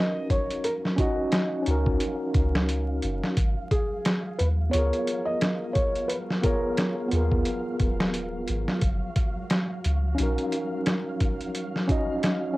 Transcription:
Already playing: synth texture F#3 F5, tine electric piano C#4 D#4 F#4 A#4, felt piano D#5
0.30 felt piano C#5, kick, closed hi-hat
0.50 closed hi-hat
0.64 felt piano A#4, closed hi-hat
0.85 snare
0.96 tine electric piano C#4 D#4 F#4, felt piano F#4, kick, closed hi-hat
1.00 tine electric piano D#5
1.32 snare, closed hi-hat
1.62 tine electric piano C#4 D#4, closed hi-hat
1.68 808-style bass C#2, tine electric piano F#4 A#4
1.86 kick
2.00 closed hi-hat
2.34 808-style bass C#2, kick, closed hi-hat
2.55 snare
2.69 closed hi-hat
3.02 808-style bass F#1, closed hi-hat
3.24 snare
3.37 808-style bass G#1, kick, closed hi-hat
3.71 felt piano G#4, kick, closed hi-hat
4.05 snare, closed hi-hat
4.39 808-style bass D#2, felt piano B4, closed hi-hat
4.70 tine electric piano B3 F4, felt piano C#5, closed hi-hat
4.74 808-style bass C#2, tine electric piano G#4 A#4
4.93 closed hi-hat
5.07 closed hi-hat
5.26 felt piano D#5
5.41 snare, closed hi-hat
5.73 felt piano C#5, kick, closed hi-hat
5.95 closed hi-hat
6.08 felt piano B4, closed hi-hat
6.30 snare
6.42 tine electric piano B3 F4 G#4, felt piano A#4, kick, closed hi-hat
6.46 tine electric piano C#5
6.77 snare, closed hi-hat
7.08 tine electric piano B3 F4, closed hi-hat
7.13 808-style bass D#2, tine electric piano G#4 A#4
7.32 kick
7.45 closed hi-hat
7.80 808-style bass D#1, kick, closed hi-hat
8.00 snare
8.14 closed hi-hat
8.48 808-style bass G#1, closed hi-hat
8.68 snare
8.81 808-style bass F#1, kick, closed hi-hat
9.16 kick, closed hi-hat
9.50 snare, closed hi-hat
9.84 808-style bass C#2, closed hi-hat
10.15 tine electric piano C#4 D#4, closed hi-hat
10.20 808-style bass A#1, tine electric piano F#4 A#4
10.38 closed hi-hat
10.52 closed hi-hat
10.86 snare, closed hi-hat
11.20 kick, closed hi-hat
11.41 closed hi-hat
11.55 closed hi-hat
11.76 snare
11.87 tine electric piano C#4 D#4 F#4, kick, closed hi-hat
11.92 tine electric piano D#5
12.23 snare, closed hi-hat
12.54 tine electric piano C#4

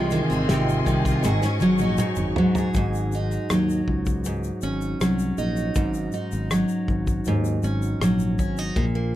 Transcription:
Already playing: fretless electric bass C2, steel-string acoustic guitar C3 G#3 F4, string section F4 D#5 G#5 C6
0.11 steel-string acoustic guitar D#3, shaker
0.30 fretless electric bass G#1, steel-string acoustic guitar C4, shaker
0.49 fretless electric bass G#1, steel-string acoustic guitar C3, snare, shaker
0.69 shaker
0.85 fretless electric bass C2, steel-string acoustic guitar D#3, kick, shaker
0.87 shaker
1.05 steel-string acoustic guitar F4, kick, shaker
1.23 fretless electric bass G#1, steel-string acoustic guitar G#2 G#4, string section F#4 C#6, snare, shaker
1.42 fretless electric bass G#2, steel-string acoustic guitar C#4, snare, shaker
1.60 fretless electric bass G#1, steel-string acoustic guitar F#3, high tom, shaker
1.78 fretless electric bass A#1, steel-string acoustic guitar D#4, high tom, shaker
1.97 steel-string acoustic guitar G#2, muted fretless electric bass stroke, mid tom, shaker
2.15 fretless electric bass G#1, mid tom, shaker
2.36 fretless electric bass G#2, steel-string acoustic guitar F#3, floor tom
2.55 steel-string acoustic guitar G#4, floor tom, shaker
2.74 fretless electric bass G#1, steel-string acoustic guitar G#2, kick, shaker
2.93 shaker
2.95 shaker
3.12 steel-string acoustic guitar D#4, shaker
3.31 cross-stick, shaker
3.50 fretless electric bass D#2, steel-string acoustic guitar F#3, cross-stick, shaker
3.69 shaker
3.88 fretless electric bass C#2, kick
4.06 kick, shaker
4.24 steel-string acoustic guitar G#2, shaker
4.44 shaker
4.61 fretless electric bass G#1, steel-string acoustic guitar C#4, shaker
4.64 shaker
4.81 shaker
5.00 fretless electric bass C2, steel-string acoustic guitar F#3, cross-stick, shaker
5.19 shaker
5.21 shaker
5.38 fretless electric bass A#1, steel-string acoustic guitar D#4, shaker
5.56 shaker
5.75 fretless electric bass G#1, steel-string acoustic guitar G#2, kick, shaker
5.94 shaker
6.12 steel-string acoustic guitar D#4, shaker
6.14 shaker
6.32 fretless electric bass G#1, shaker
6.51 steel-string acoustic guitar F#3, cross-stick, shaker
6.69 shaker
6.88 fretless electric bass G#1, kick, shaker
7.07 kick, shaker
7.25 shaker
7.27 fretless electric bass D#2, steel-string acoustic guitar G#2, shaker
7.45 shaker
7.63 fretless electric bass G#1, steel-string acoustic guitar C#4, shaker
7.82 shaker
8.00 fretless electric bass A#1, steel-string acoustic guitar F#3, cross-stick, shaker
8.19 shaker
8.21 shaker
8.39 fretless electric bass G#1, steel-string acoustic guitar C#4, kick, shaker
8.57 steel-string acoustic guitar D#4, shaker
8.76 fretless electric bass A#1, steel-string acoustic guitar A#2, kick, shaker
8.95 steel-string acoustic guitar A#3, shaker

